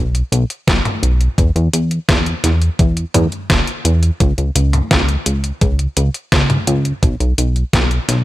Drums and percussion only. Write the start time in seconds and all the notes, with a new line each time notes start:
0.15 closed hi-hat
0.32 closed hi-hat
0.50 closed hi-hat
0.68 kick, snare, closed hi-hat
0.85 closed hi-hat, mid tom
1.03 closed hi-hat
1.21 closed hi-hat
1.38 kick, closed hi-hat
1.56 closed hi-hat
1.73 closed hi-hat
1.91 closed hi-hat
2.09 kick, snare, closed hi-hat
2.26 closed hi-hat
2.44 snare, closed hi-hat
2.62 closed hi-hat
2.79 kick, closed hi-hat
2.97 closed hi-hat
3.14 closed hi-hat, mid tom
3.32 closed hi-hat
3.50 kick, snare, closed hi-hat
3.67 closed hi-hat
3.85 closed hi-hat
4.03 closed hi-hat
4.20 kick, closed hi-hat
4.38 closed hi-hat
4.56 closed hi-hat
4.73 closed hi-hat, mid tom
4.91 kick, snare, closed hi-hat
5.09 closed hi-hat
5.26 closed hi-hat
5.44 closed hi-hat
5.61 kick, closed hi-hat
5.79 closed hi-hat
5.97 closed hi-hat
6.14 closed hi-hat
6.32 kick, snare, closed hi-hat
6.50 closed hi-hat, mid tom
6.67 closed hi-hat
6.85 closed hi-hat
7.03 kick, closed hi-hat
7.20 closed hi-hat
7.38 closed hi-hat
7.56 closed hi-hat
7.73 kick, snare, closed hi-hat
7.91 closed hi-hat
8.09 snare, closed hi-hat